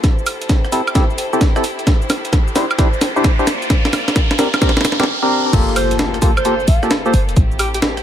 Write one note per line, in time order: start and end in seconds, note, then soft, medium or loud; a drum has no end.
0.00 3.44 E4 medium
0.00 5.03 G4 medium
0.00 3.43 A4 medium
0.00 1.85 C5 medium
0.00 kick medium
0.00 snare medium
0.00 closed hi-hat medium
0.00 riser medium
0.00 shaker soft
0.19 shaker soft
0.26 open hi-hat loud
0.26 high woodblock medium
0.26 shaker medium
0.42 closed hi-hat medium
0.42 shaker soft
0.49 kick medium
0.49 snare medium
0.49 closed hi-hat medium
0.49 shaker soft
0.65 cross-stick soft
0.65 shaker soft
0.72 0.81 C4 medium
0.72 0.81 E4 medium
0.72 0.81 G4 medium
0.72 0.82 A4 loud
0.72 open hi-hat medium
0.72 shaker medium
0.87 high woodblock medium
0.87 shaker soft
0.95 1.04 C4 medium
0.95 1.04 E4 medium
0.95 1.04 G4 medium
0.95 1.04 A4 loud
0.95 kick medium
0.95 snare medium
0.95 closed hi-hat medium
0.95 shaker soft
1.10 shaker soft
1.18 open hi-hat loud
1.18 shaker medium
1.33 1.41 C4 medium
1.33 1.41 E4 medium
1.33 1.41 G4 medium
1.33 1.41 A4 loud
1.33 shaker soft
1.41 kick medium
1.41 snare medium
1.41 closed hi-hat medium
1.41 shaker soft
1.56 1.64 C4 medium
1.56 1.64 E4 medium
1.56 1.64 G4 medium
1.56 1.64 A4 medium
1.56 cross-stick medium
1.56 shaker soft
1.64 open hi-hat medium
1.64 shaker medium
1.79 closed hi-hat soft
1.79 shaker soft
1.87 5.04 C5 medium
1.87 kick loud
1.87 snare medium
1.87 closed hi-hat medium
1.87 shaker soft
2.02 shaker soft
2.10 snare medium
2.10 open hi-hat loud
2.10 high woodblock medium
2.10 shaker medium
2.25 closed hi-hat medium
2.25 shaker soft
2.33 kick loud
2.33 snare medium
2.33 closed hi-hat medium
2.33 shaker soft
2.48 shaker soft
2.56 2.65 D4 medium
2.56 2.65 E4 medium
2.56 2.65 G4 medium
2.56 2.65 C5 loud
2.56 snare medium
2.56 open hi-hat medium
2.56 shaker medium
2.71 high woodblock medium
2.71 shaker soft
2.78 2.88 D4 loud
2.78 2.88 E4 medium
2.78 2.88 G4 medium
2.78 2.88 C5 loud
2.78 kick loud
2.78 snare medium
2.78 closed hi-hat medium
2.78 shaker soft
2.94 shaker soft
3.01 snare medium
3.01 open hi-hat loud
3.01 shaker medium
3.16 3.24 D4 medium
3.16 3.24 E4 medium
3.16 3.24 G4 medium
3.16 3.24 C5 loud
3.16 shaker soft
3.24 kick loud
3.24 snare medium
3.24 closed hi-hat medium
3.24 shaker soft
3.39 3.46 D4 medium
3.39 3.46 E4 medium
3.39 3.46 G4 medium
3.39 3.46 C5 medium
3.39 shaker soft
3.47 5.06 A#3 medium
3.47 5.06 F4 medium
3.47 5.06 D5 medium
3.47 snare medium
3.47 open hi-hat medium
3.47 shaker medium
3.62 closed hi-hat soft
3.62 shaker soft
3.70 kick loud
3.70 snare medium
3.70 closed hi-hat medium
3.70 shaker soft
3.85 snare medium
3.85 shaker soft
3.93 snare medium
3.93 open hi-hat loud
3.93 high woodblock medium
3.93 shaker medium
4.08 snare medium
4.08 closed hi-hat medium
4.08 shaker soft
4.16 kick loud
4.16 snare medium
4.16 closed hi-hat medium
4.16 shaker soft
4.31 snare medium
4.31 shaker soft
4.39 4.48 C4 medium
4.39 4.48 D4 medium
4.39 4.48 G4 medium
4.39 4.48 A#4 loud
4.39 snare loud
4.39 open hi-hat medium
4.39 shaker medium
4.54 snare medium
4.54 high woodblock medium
4.54 shaker soft
4.62 4.71 C4 loud
4.62 4.71 D4 medium
4.62 4.71 G4 medium
4.62 4.71 A#4 loud
4.62 kick loud
4.62 snare loud
4.62 closed hi-hat medium
4.62 shaker soft
4.69 snare medium
4.77 snare medium
4.77 shaker soft
4.81 snare medium
4.85 snare loud
4.85 open hi-hat loud
4.85 shaker medium
4.92 snare medium
5.00 5.04 C4 medium
5.00 5.04 D4 medium
5.00 5.04 G4 medium
5.00 5.04 A#4 medium
5.00 snare medium
5.00 shaker soft
5.03 snare medium
5.23 5.52 C4 medium
5.23 5.52 D4 medium
5.23 5.52 G4 medium
5.23 5.52 A#4 loud
5.53 6.18 G1 loud
5.53 6.19 A#3 loud
5.53 7.35 A#3 medium
5.53 7.35 D4 medium
5.53 6.19 F4 medium
5.53 7.35 F4 medium
5.53 6.19 G4 medium
5.53 6.19 A4 loud
5.53 7.35 A4 medium
5.53 kick loud
5.53 closed hi-hat medium
5.53 crash loud
5.53 impact medium
5.53 shaker soft
5.68 shaker soft
5.76 5.95 C5 medium
5.76 open hi-hat loud
5.76 high woodblock medium
5.76 shaker medium
5.91 closed hi-hat medium
5.91 shaker soft
5.99 snare loud
5.99 closed hi-hat medium
5.99 shaker soft
6.14 cross-stick soft
6.14 closed hi-hat soft
6.14 shaker soft
6.22 6.31 A#3 medium
6.22 6.31 F4 medium
6.22 6.31 G4 medium
6.22 6.31 A4 loud
6.22 kick loud
6.22 open hi-hat loud
6.22 shaker medium
6.37 6.66 C5 medium
6.37 high woodblock medium
6.37 shaker soft
6.45 6.54 A#3 loud
6.45 6.54 F4 medium
6.45 6.54 G4 medium
6.45 6.54 A4 loud
6.45 closed hi-hat medium
6.45 shaker soft
6.60 shaker soft
6.68 6.79 A#1 loud
6.68 6.86 F5 medium
6.68 kick medium
6.68 open hi-hat loud
6.68 shaker medium
6.83 6.91 A#3 loud
6.83 6.91 F4 medium
6.83 6.91 G4 medium
6.83 6.91 A4 loud
6.83 cross-stick medium
6.83 shaker soft
6.91 snare loud
6.91 closed hi-hat medium
6.91 shaker soft
7.06 7.13 A#3 medium
7.06 7.13 F4 medium
7.06 7.13 G4 medium
7.06 7.13 A4 loud
7.06 7.20 C5 medium
7.06 shaker soft
7.14 7.30 G1 medium
7.14 open hi-hat loud
7.14 shaker medium
7.29 7.34 D1 medium
7.29 closed hi-hat soft
7.29 shaker soft
7.36 8.02 A1 loud
7.36 8.03 A3 medium
7.36 8.03 C4 medium
7.36 8.03 E4 medium
7.36 8.03 G4 medium
7.36 kick loud
7.36 closed hi-hat medium
7.36 shaker soft
7.52 shaker soft
7.59 7.69 G4 medium
7.59 open hi-hat loud
7.59 high woodblock medium
7.59 shaker medium
7.74 7.79 G4 medium
7.74 closed hi-hat medium
7.74 shaker soft
7.82 snare loud
7.82 closed hi-hat medium
7.82 shaker soft
7.97 cross-stick soft
7.97 closed hi-hat soft
7.97 shaker soft